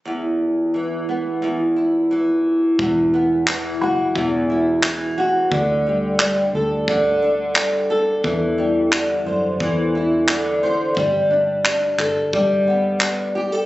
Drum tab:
CP |--------|--x---x-|--x---x-|--x---x-|
BD |--------|o---o---|o---o---|o---o---|

CP |--xx--x-|
BD |o---o---|